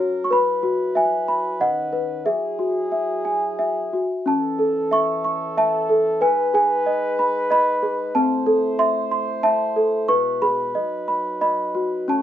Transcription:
Already playing: F#3 C#4 A#4 C#5 A#5
0.00 F#4
0.24 C#6
0.31 E4 B4 B5
0.63 F#4
0.95 E5 G#5
1.28 B5
1.60 D#3 C#4 D#5 F#5
1.93 B4
2.26 F#3 E4 G#4 E5
2.59 F#4
2.92 E5
3.25 G#5
3.59 E5
3.93 F#4
4.25 E3 C#4 A4 A5
4.59 A4
4.91 E5 C#6
5.24 C#6
5.57 E5 A5
5.89 A4
6.21 G#3 D#4 B4 G#5
6.54 G#4 G#5
6.86 D#5
7.19 B5
7.51 D#5 B5
7.82 G#4
8.15 A3 C4 E4 C5 A5
8.46 A4
8.79 E5 C6
9.12 C6
9.43 E5 A5
9.76 A4
10.08 B2 G#3 B4 C#6
10.42 G#4 B5
10.75 F#3 D#4 D#5
11.08 B5
11.41 D#5 B5
11.75 F#4
12.08 A3 C#4 E4 C#5 A5

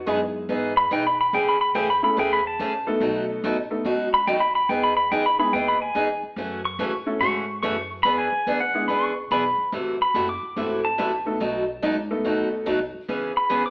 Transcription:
Already playing: F#4
0.06 F#2 E3 G#3 B3 D#4 E4 G#4
0.49 G#2 E3 B3 D#4 G#4
0.77 B5
0.91 B2 E3 B3 D#4 G#4 G5
1.07 B5
1.21 B5
1.33 A2 C#3 E3 A3 C#4 G#4 G5
1.49 B5
1.61 B5
1.75 G#2 C#3 E3 A3 C#4 G#4 G5
1.90 B5
2.03 A3 C#4 E4 G#4 A4 B5, muted upright bass stroke
2.17 E2 C#3 E3 A3 C#4 G#4 G5
2.33 B5
2.47 A5
2.59 C#2 C#3 E3 A3 C#4 G#4
2.87 A3 B3 D#4 F#4 A4, muted upright bass stroke
3.00 B1 B2 F#3 A3 D#4 F#4
3.43 A1 B2 F#3 A3 D#4 F#4
3.70 A3 B3 D#4 F#4 A4
3.85 C#2 B2 F#3 A3 D#4 F#4
4.14 B5
4.27 D#2 B2 F#3 A3 D#4 F#4 G5
4.40 B5
4.55 B5
4.69 E2 E3 B3 D#4 G#4 G5
4.84 B5
4.97 B5
5.11 C#2 E3 B3 D#4 G#4 G5
5.26 B5
5.39 G#3 B3 D#4 E4 G#4 B5, muted upright bass stroke
5.53 D#2 E3 B3 D#4 G#4 G5
5.68 B5
5.82 G#5
5.95 E2 E3 B3 D#4 G#4
6.23 muted upright bass stroke
6.36 F#2 C#3 E3 A3 C#4 F#4
6.65 C#6
6.79 A2 C#3 E3 A3 C#4 F#4
7.06 A3 C#4 E4 F#4 A4
7.20 G#2 C#3 E3 A3 C#4 F#4 C#6
7.63 F#2 C#3 E3 A3 C#4 F#4 C#6
8.03 E2 E3 B3 D4 G#4 B5
8.18 G#5
8.32 muted upright bass stroke
8.46 D2 E3 B3 D4 G#4
8.60 F#5
8.74 G#3 B3 D4 E4 G#4
8.88 C#2 E3 B3 D4 G#4 B5
9.04 C#6
9.31 B1 E3 B3 D4 G#4 B5
9.58 muted upright bass stroke
9.72 A1 C3 E3 A3 E4 F#4
10.00 B5, muted upright bass stroke
10.14 F#1 C3 E3 A3 E4 F#4
10.29 D6
10.42 muted upright bass stroke
10.56 G#1 C3 E3 A3 C4 E4 F#4 A4
10.85 A5
10.98 A1 C3 E3 A3 E4 F#4
11.26 A3 B3 D#4 F#4 A4
11.40 B1 B2 F#3 A3 D#4 F#4
11.82 C#2 B2 F#3 A3 D#4 F#4
12.10 A3 B3 D#4 F#4 A4
12.24 D#2 B2 F#3 A3 D#4 F#4
12.66 C2 B2 F#3 A3 D#4 F#4
12.94 muted upright bass stroke
13.08 C#2 C#3 E3 B3 C#4 G#4
13.37 B5
13.49 D#2 C#3 E3 B3 C#4 G#4
13.66 D6

